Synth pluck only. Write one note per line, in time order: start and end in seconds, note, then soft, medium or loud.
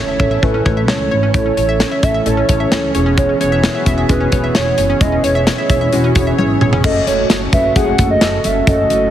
0.08 0.18 E5 medium
0.19 0.29 E5 loud
0.31 0.41 E5 medium
0.42 0.52 A3 medium
0.54 0.64 C#4 medium
0.65 0.75 C#5 medium
0.77 0.87 E5 medium
0.88 0.98 C#5 loud
1.11 1.21 C#5 medium
1.23 1.33 C#4 medium
1.34 1.44 A3 medium
1.46 1.56 C#4 medium
1.57 1.67 C#5 medium
1.69 1.78 E5 loud
1.80 1.90 C#5 medium
1.91 2.01 E5 medium
2.03 2.13 E5 loud
2.14 2.24 E5 medium
2.26 2.36 A3 medium
2.37 2.47 C#4 medium
2.49 2.58 C#5 medium
2.60 2.70 E5 medium
2.72 2.81 C#5 loud
2.95 3.04 C#5 medium
3.06 3.16 C#4 medium
3.18 3.27 G#3 medium
3.29 3.39 C#4 medium
3.41 3.50 C#5 medium
3.52 3.62 E5 loud
3.64 3.73 C#5 medium
3.75 3.85 E5 medium
3.86 3.96 E5 loud
3.98 4.07 E5 medium
4.09 4.19 G#3 medium
4.20 4.30 C#4 medium
4.32 4.42 C#5 medium
4.44 4.53 E5 medium
4.55 4.65 C#5 loud
4.78 4.88 C#5 medium
4.90 4.99 C#4 medium
5.01 5.11 G#3 medium
5.12 5.22 C#4 medium
5.24 5.33 C#5 medium
5.35 5.45 E5 loud
5.47 5.56 C#5 medium
5.58 5.68 E5 medium
5.70 5.79 E5 loud
5.81 5.91 E5 medium
5.93 6.02 G#3 medium
6.04 6.14 C#4 medium
6.16 6.25 C#5 medium
6.27 6.37 E5 medium
6.39 6.48 C#5 loud
6.61 6.71 C#5 medium
6.73 6.82 C#4 loud